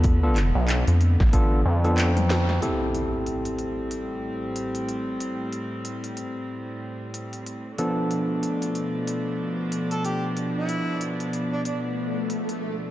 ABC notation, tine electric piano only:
X:1
M:4/4
L:1/16
Q:"Swing 16ths" 1/4=93
K:Am
V:1 name="Tine electric piano"
[B,DFA] [B,DFA] z6 [B,DFA]2 z [B,DFA]2 z3 | [CEGA]16- | [CEGA]16 | [F,B,DA]16- |
[F,B,DA]16 |]